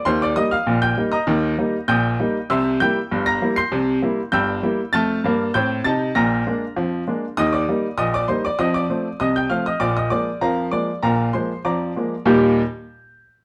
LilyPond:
<<
  \new Staff \with { instrumentName = "Upright piano" } { \time 2/4 \key ees \major \tempo 4 = 98 <c'' c'''>16 <d'' d'''>16 <ees'' ees'''>16 <f'' f'''>8 <g'' g'''>8 <ees'' bes'' ees'''>16~ | <ees'' bes'' ees'''>4 <g'' ees''' g'''>4 | <e'' c''' e'''>8 <g'' g'''>8. <bes'' bes'''>8 <c''' g''' c''''>16~ | <c''' g''' c''''>4 <g'' e''' g'''>4 |
<a'' f''' a'''>4 <g'' g'''>8 <a'' a'''>8 | <bes'' f''' bes'''>4 r4 | <ees'' ees'''>16 <d'' d'''>8. <ees'' ees'''>16 <d'' d'''>16 <c'' c'''>16 <d'' d'''>16 | <ees'' ees'''>16 <d'' d'''>8. <ees'' ees'''>16 <g'' g'''>16 <f'' f'''>16 <ees'' ees'''>16 |
<d'' d'''>16 <ees'' ees'''>16 <d'' d'''>8 <bes' f'' bes''>8 <d'' d'''>8 | <bes' f'' bes''>8 <c'' c'''>8 <d'' bes'' d'''>4 | <ees, bes, g bes ees' g' g'''>8 r4. | }
  \new Staff \with { instrumentName = "Upright piano" } { \clef bass \time 2/4 \key ees \major <ees, ees>8 <g bes ees'>8 <bes,, bes,>8 <g bes ees'>8 | <ees, ees>8 <g bes ees'>8 <bes,, bes,>8 <g bes ees'>8 | <c, c>8 <g bes e'>8 <g,, g,>8 <g bes e'>8 | <c, c>8 <g bes e'>8 <g,, g,>8 <g bes e'>8 |
<f, a>8 <g, bes>8 <a, c'>8 <c ees'>8 | <bes,, bes,>8 <aes bes d'>8 <f, f>8 <aes bes d'>8 | <ees, ees>8 <g bes ees'>8 <bes,, bes,>8 <g bes ees'>8 | <f, f>8 <f a c'>8 <c, c>8 <f a c'>8 |
<bes,, bes,>8 <f aes bes>8 <f, f>8 <f aes bes>8 | <bes,, bes,>8 <f aes bes>8 <f, f>8 <f aes bes>8 | r2 | }
>>